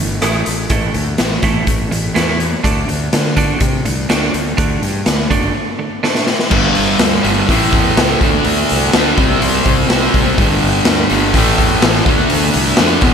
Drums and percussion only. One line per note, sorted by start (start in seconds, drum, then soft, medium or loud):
0.22 cross-stick medium
0.22 closed hi-hat medium
0.46 closed hi-hat soft
0.70 kick medium
0.70 closed hi-hat medium
0.94 closed hi-hat soft
1.18 snare medium
1.18 closed hi-hat medium
1.42 kick medium
1.42 closed hi-hat medium
1.67 kick medium
1.67 closed hi-hat medium
1.92 closed hi-hat medium
2.16 snare medium
2.16 closed hi-hat medium
2.40 closed hi-hat medium
2.64 kick medium
2.64 closed hi-hat medium
2.89 closed hi-hat soft
3.13 snare medium
3.13 closed hi-hat medium
3.37 kick medium
3.37 closed hi-hat medium
3.60 kick loud
3.60 closed hi-hat medium
3.85 closed hi-hat medium
4.10 snare medium
4.10 closed hi-hat medium
4.34 closed hi-hat medium
4.58 kick medium
4.58 closed hi-hat medium
4.83 closed hi-hat soft
5.06 snare medium
5.06 closed hi-hat medium
5.31 kick medium
5.31 closed hi-hat medium
6.04 snare medium
6.15 snare medium
6.26 snare medium
6.39 snare medium
6.51 kick loud
6.51 crash loud
6.75 open hi-hat medium
6.99 snare loud
6.99 open hi-hat medium
7.24 open hi-hat medium
7.49 kick medium
7.49 open hi-hat medium
7.72 kick medium
7.72 open hi-hat medium
7.97 snare loud
7.97 open hi-hat medium
8.21 kick loud
8.21 open hi-hat medium
8.45 open hi-hat medium
8.69 open hi-hat soft
8.93 snare loud
8.93 open hi-hat medium
9.18 kick loud
9.18 open hi-hat medium
9.42 open hi-hat medium
9.65 kick medium
9.65 open hi-hat medium
9.90 snare loud
9.90 open hi-hat medium
10.14 kick medium
10.14 open hi-hat medium
10.38 kick loud
10.38 open hi-hat medium
10.62 open hi-hat medium
10.85 snare loud
10.85 open hi-hat medium
11.09 open hi-hat medium
11.34 kick medium
11.34 open hi-hat medium
11.58 kick medium
11.58 open hi-hat medium
11.82 snare loud
11.82 open hi-hat medium
11.94 snare soft
12.06 kick loud
12.06 open hi-hat medium
12.30 open hi-hat medium
12.53 open hi-hat medium
12.77 snare loud
12.77 open hi-hat medium
13.01 kick loud
13.01 open hi-hat medium